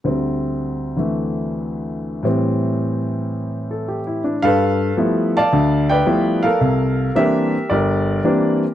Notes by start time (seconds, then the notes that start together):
0.04 D2 D3 G3 C4
0.96 D3 E3 A3
2.23 A2 E3 G3 C4
3.71 A4
3.88 G4
4.07 E4
4.24 D4
4.42 G2 A4 B4 F5
4.97 F3 G3 A3 B3 E4
5.37 D5 F5 A5
5.52 D2 D3
5.90 B4 D5 G5
6.06 F3 G3 A3 B3 E4
6.43 A4 A#4 F5
6.61 C2
7.15 E3 G3 A#3 C4 D4 G4 A#4 E5
7.70 G1 G4 A#4 D5
8.24 E3 G3 A#3 C4 D4